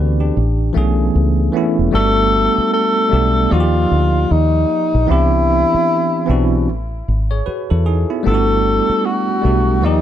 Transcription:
Already playing: fingered electric bass D2, tine electric piano E3 B3 C4 D4 F#4 G4 A4 B4 D5
0.20 tine electric piano D4 G4
0.37 fingered electric bass A1
0.73 fingered electric bass B1, tine electric piano E3 A3 B3 C#4
0.78 tine electric piano G#4
1.15 fingered electric bass C#2
1.52 tine electric piano E3 A3 B3 C#4
1.57 tine electric piano E4
1.79 fingered electric bass E1
1.91 fingered electric bass G1, tine electric piano G3 A3 B3 D4, tenor saxophone A4
1.96 tine electric piano F#4
2.58 muted fingered electric bass stroke
2.73 tenor saxophone A4
3.09 fingered electric bass B1, tine electric piano G3 A3 B3 D4
3.14 tine electric piano G4
3.49 fingered electric bass D#2, tine electric piano F3 A#3 D#4 D5, tenor saxophone F4
3.54 tine electric piano F#4
3.60 tine electric piano G4
3.91 fingered electric bass D2
4.31 fingered electric bass D#2, tenor saxophone D#4
4.95 fingered electric bass A#1
5.07 fingered electric bass C2, tine electric piano E3 B3 C4 D4, tenor saxophone E4
5.12 tine electric piano G4
5.74 muted fingered electric bass stroke
6.26 fingered electric bass B1, tine electric piano E3 B3 C4 D4
6.31 tine electric piano F#4
6.69 fingered electric bass A1
7.08 fingered electric bass G#1
7.31 tine electric piano G#4 C#5
7.46 tine electric piano F#4 B4, muted fingered electric bass stroke
7.70 fingered electric bass E2, tine electric piano E4 A4
7.86 tine electric piano D#4 G#4
8.10 tine electric piano B3 E4
8.23 fingered electric bass G1, tine electric piano G3 A3 B3 D4, tenor saxophone A4
8.27 tine electric piano F4
8.34 tine electric piano F#4
8.89 muted fingered electric bass stroke
9.05 tenor saxophone F#4
9.42 fingered electric bass B1, tine electric piano G3 A3 B3 D4
9.46 tine electric piano F#4
9.81 fingered electric bass D#2, tine electric piano F3 A#3 D#4 D5, tenor saxophone D#4
9.86 tine electric piano G4

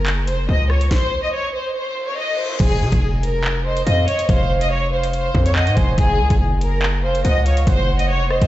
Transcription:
Already playing: 808-style bass F#1, violin section A#4
0.06 clap, closed hi-hat
0.27 808-style bass F1, violin section C5, closed hi-hat
0.39 808-style bass F#1
0.49 808-style bass C#2, violin section D#5
0.70 violin section C#5, cross-stick
0.81 closed hi-hat
0.91 violin section C5, kick, snare
1.23 violin section D#5
1.33 violin section C#5
1.54 violin section C5
1.75 violin section C5, reverse cymbal
2.08 violin section C#5
2.18 violin section D#5
2.39 violin section C5
2.60 808-style bass F1, violin section G#4, kick, closed hi-hat, crash
2.81 808-style bass C3
2.92 808-style bass F1, kick, closed hi-hat
3.23 violin section A#4, closed hi-hat
3.44 clap
3.66 violin section C5, soft synth lead D#5
3.77 closed hi-hat
3.87 808-style bass F2, violin section D#5, soft synth lead F5, closed hi-hat
4.08 violin section C#5, soft synth lead D#5, closed hi-hat
4.19 closed hi-hat
4.29 808-style bass F1, violin section C5, soft synth lead F5, kick, closed hi-hat
4.61 violin section D#5, closed hi-hat
4.71 violin section C#5
4.92 violin section C5, soft synth lead F5
5.04 closed hi-hat
5.13 violin section C5, closed hi-hat
5.35 808-style bass F2, kick
5.46 violin section C#5, closed hi-hat
5.56 violin section D#5, soft synth lead F#5, clap
5.67 808-style bass G#2, closed hi-hat
5.77 808-style bass F1, violin section C5, soft synth lead G#5, kick, closed hi-hat
5.98 808-style bass F#1, violin section G#4, kick, closed hi-hat
6.19 808-style bass C#2
6.30 808-style bass F#1, kick, closed hi-hat
6.61 violin section A#4, closed hi-hat
6.82 clap
7.03 808-style bass F1, violin section C5, soft synth lead F5
7.15 808-style bass F#1, closed hi-hat
7.25 808-style bass C#2, violin section D#5, soft synth lead F#5, closed hi-hat
7.45 violin section C#5, soft synth lead F5, closed hi-hat
7.57 closed hi-hat
7.67 808-style bass F#1, violin section C5, soft synth lead F#5, kick, closed hi-hat
7.99 violin section D#5, closed hi-hat
8.09 808-style bass F1, violin section C#5
8.30 violin section C5, soft synth lead D#5, cross-stick
8.42 808-style bass F#1, kick, closed hi-hat

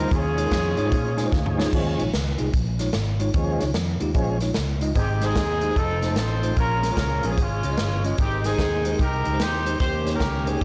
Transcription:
Already playing: horn section A#4
0.04 tine electric piano G3 D#4 F4 C5
0.11 fingered electric bass D#2, tine electric piano D#3, tonewheel organ F3 C#4 D#4 G#4, horn section C#4 F4 G#4, kick, closed hi-hat
0.37 tine electric piano G#3 D#4 F4 C#5, closed hi-hat
0.43 tine electric piano G#3 D#4 F4 A#4
0.51 fingered electric bass F2, kick, snare, closed hi-hat
0.77 fingered electric bass G#2, tine electric piano G#3 D#4 F4 C#5, closed hi-hat
0.84 tine electric piano G#3 D#4 F4 C5
0.92 fingered electric bass A#2, kick, closed hi-hat
1.17 tine electric piano G#3 D#4 F4 C#5 G#5, snare, closed hi-hat
1.24 tine electric piano G#3 D#4 F4 C5
1.32 fingered electric bass D2, tine electric piano F5, kick, snare
1.46 mid tom
1.57 tine electric piano G#3 D#4 F4 C#5, snare
1.65 tine electric piano G#3 D#4 F4 G#4
1.73 fingered electric bass D#2, tine electric piano D#3, tonewheel organ F3 G#3 C#4, kick, crash
1.98 fingered electric bass A#1, tine electric piano G#3 D#4 F4 C#5, closed hi-hat
2.14 fingered electric bass C#2, snare, closed hi-hat
2.38 fingered electric bass C2, tine electric piano G#3 D#4 F4 G#4, closed hi-hat
2.54 fingered electric bass A#1, kick, closed hi-hat
2.79 tine electric piano G#3 D#4 F4 C#5, snare, closed hi-hat
2.93 fingered electric bass G#1, snare, closed hi-hat
3.20 tine electric piano G#3 D#4 F4 C#5, closed hi-hat
3.34 fingered electric bass D#2, tine electric piano D#3, tonewheel organ F3 G#3 C#4, kick, closed hi-hat
3.60 fingered electric bass C#2, tine electric piano G#3 D#4 F4 C#5, snare, closed hi-hat
3.74 fingered electric bass F2, snare, closed hi-hat
4.00 fingered electric bass D#2, tine electric piano G#3 D#4 F4 G4, closed hi-hat
4.14 fingered electric bass A#1, tonewheel organ F3 G#3 C#4, kick, closed hi-hat
4.40 tine electric piano G#3 D#4 F4 C#5, snare, closed hi-hat
4.54 fingered electric bass C#2, snare, closed hi-hat
4.81 tine electric piano G#3 D#4 F4 D#5, closed hi-hat
4.95 fingered electric bass G#1, tine electric piano G#2, tonewheel organ G#3 C4 D#4 G#4, horn section C4 D#4 G4, kick, closed hi-hat
5.21 tine electric piano G#3 D#4 G4 C5, horn section C4 D#4 G#4, snare, closed hi-hat
5.29 tine electric piano G#3 D#4 G4 D#5
5.35 fingered electric bass D#2, kick, snare, closed hi-hat
5.61 tine electric piano G#3 D#4 G4 D#5, closed hi-hat
5.69 tine electric piano G#3 D#4 G4 C5
5.75 fingered electric bass F1, tonewheel organ F3 C4 D#4 A4, horn section C4 D#4 A4, kick, closed hi-hat
6.02 tine electric piano A3 D#4 F4 C5, snare, closed hi-hat
6.10 tine electric piano A3 D#4 F4 C5
6.16 fingered electric bass A1, horn section D#4 A4 C5, snare, closed hi-hat
6.42 tine electric piano A3 D#4 F4 C5, closed hi-hat
6.56 fingered electric bass A#1, tine electric piano A#2, tonewheel organ F3 A#3 C#4 G#4, horn section C#4 F4 A#4, kick, closed hi-hat
6.82 tine electric piano G#3 C#4 F4 A#4, snare, closed hi-hat
6.90 tine electric piano G#3 C#4 F4 C#5, horn section C#4 F4 A#4
6.97 fingered electric bass C#2, kick, snare, closed hi-hat
7.23 fingered electric bass A#1, tine electric piano G#3 C#4 F4 A#4, horn section G#4, closed hi-hat
7.30 tine electric piano G#3 C#4 F4 C5
7.37 fingered electric bass G#1, tine electric piano G#2, tonewheel organ E3 G#3 C#4 G#4, horn section G#3 C#4 F4, kick, closed hi-hat
7.42 tonewheel organ F3
7.63 fingered electric bass C#2, tine electric piano G#3 C#4 F4 C#5, closed hi-hat
7.71 tine electric piano G#3 C#4 F4 D#5
7.78 fingered electric bass G1, snare, closed hi-hat
8.04 tine electric piano G#3 C#4 F4 D#5, closed hi-hat
8.18 fingered electric bass G#1, tine electric piano G#2, tonewheel organ D#3 G#3 C4 F#4, horn section C4 D#4 G4, kick, closed hi-hat
8.23 tonewheel organ G5
8.44 tine electric piano G#3 D#4 G4 C5, horn section C4 D#4 G#4, snare, closed hi-hat
8.52 tine electric piano G#3 D#4 G4 C5
8.59 fingered electric bass D#2, kick, snare, closed hi-hat
8.85 tine electric piano G#3 D#4 G4 C5, closed hi-hat
8.92 tine electric piano G#3 D#4 G4 A#4
8.99 fingered electric bass C2, horn section D#4 G4 A#4, kick, closed hi-hat
9.25 fingered electric bass C#2, tine electric piano G#3 D#4 G4 A#4, closed hi-hat
9.32 tine electric piano G#3 D#4 G4 C5
9.40 fingered electric bass D#2, horn section D#4 G4 C5, snare, closed hi-hat
9.65 tine electric piano G#3 D#4 G4 C5, closed hi-hat
9.79 fingered electric bass D#2, tonewheel organ D#3 A#3 C#4 F4, tine electric piano D#3, horn section G4 C5, kick, closed hi-hat
9.85 tonewheel organ G4
10.05 tine electric piano A#3 D#4 G4 C#5, snare, closed hi-hat
10.12 tine electric piano A#3 D#4 G4 C#5, horn section C#4 G4 A#4
10.20 fingered electric bass C#2, kick, snare, closed hi-hat
10.46 tine electric piano A#3 D#4 G4 C5, horn section G#4, closed hi-hat
10.53 tine electric piano A#3 D#4 G4 C#5
10.61 horn section G4

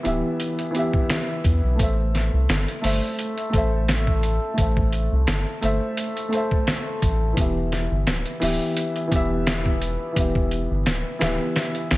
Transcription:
Already playing: upright piano E3 B3 G4 E5
0.03 sub bass D1, upright piano E3 B3 G4 E5, closed hi-hat
0.40 closed hi-hat
0.59 closed hi-hat
0.71 upright piano E3 B3, closed hi-hat
0.76 upright piano G4 E5
0.93 kick
1.10 snare, closed hi-hat
1.44 sub bass E2, kick, closed hi-hat
1.63 sub bass B1
1.75 upright piano A3 A4
1.79 sub bass A1, upright piano C5 E5, kick, closed hi-hat
2.15 snare, closed hi-hat
2.33 sub bass C2
2.49 sub bass G1, snare, closed hi-hat
2.68 closed hi-hat
2.81 sub bass G1, upright piano A3 A4 C5, open hi-hat
2.86 upright piano E5
3.19 closed hi-hat
3.38 closed hi-hat
3.50 sub bass A1, upright piano A3 A4, kick, closed hi-hat
3.55 upright piano C5 E5
3.88 snare, closed hi-hat
4.07 kick
4.23 closed hi-hat
4.54 upright piano A3 A4
4.58 sub bass A1, upright piano C5, kick, closed hi-hat
4.62 upright piano E5
4.77 kick
4.93 closed hi-hat
5.12 sub bass C2
5.27 sub bass G1, snare, closed hi-hat
5.61 sub bass G1, upright piano A3 A4 C5 E5, closed hi-hat
5.97 closed hi-hat
6.17 closed hi-hat
6.28 upright piano A3 A4
6.33 upright piano C5 E5, closed hi-hat
6.51 kick
6.67 snare, closed hi-hat
7.02 sub bass A1, kick, closed hi-hat
7.33 upright piano E3 B3
7.37 sub bass E1, upright piano G4 E5, kick, closed hi-hat
7.72 snare, closed hi-hat
7.91 sub bass G1
8.07 sub bass D1, snare, closed hi-hat
8.26 closed hi-hat
8.40 sub bass D1, upright piano E3 B3 G4 E5, open hi-hat
8.77 closed hi-hat
8.96 closed hi-hat
9.07 upright piano E3 B3
9.12 sub bass E1, upright piano G4 E5, kick, closed hi-hat
9.47 snare, closed hi-hat
9.65 kick
9.82 closed hi-hat
10.12 upright piano E3 B3
10.16 sub bass E1, upright piano G4 E5, kick, closed hi-hat
10.35 kick
10.51 closed hi-hat
10.70 sub bass G1
10.86 sub bass D1, snare, closed hi-hat
11.19 sub bass D1, upright piano E3 B3 G4, snare, closed hi-hat
11.23 upright piano E5
11.56 snare, closed hi-hat
11.75 closed hi-hat
11.91 sub bass B1, snare, closed hi-hat

